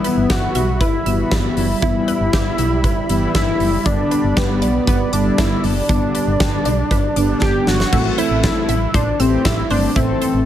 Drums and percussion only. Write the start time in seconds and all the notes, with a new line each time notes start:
0.04 closed hi-hat
0.30 kick, snare, closed hi-hat
0.55 closed hi-hat
0.81 kick, closed hi-hat
1.06 closed hi-hat
1.31 kick, snare, closed hi-hat
1.57 open hi-hat
1.82 kick, closed hi-hat
2.08 closed hi-hat
2.33 kick, snare, closed hi-hat
2.58 closed hi-hat
2.84 kick, closed hi-hat
3.10 closed hi-hat
3.35 kick, snare, closed hi-hat
3.60 open hi-hat
3.86 kick, closed hi-hat
4.11 closed hi-hat
4.37 kick, snare, closed hi-hat
4.62 closed hi-hat
4.87 kick, closed hi-hat
5.13 closed hi-hat
5.38 kick, snare, closed hi-hat
5.64 open hi-hat
5.89 kick, closed hi-hat
6.15 closed hi-hat
6.40 kick, snare, closed hi-hat
6.65 closed hi-hat
6.91 kick, closed hi-hat
7.17 closed hi-hat
7.42 kick, snare
7.67 snare
7.80 snare
7.93 kick, crash
8.18 closed hi-hat
8.44 kick, snare, closed hi-hat
8.69 closed hi-hat
8.94 kick, closed hi-hat
9.20 closed hi-hat
9.45 kick, snare, closed hi-hat
9.70 open hi-hat
9.96 kick, closed hi-hat
10.22 closed hi-hat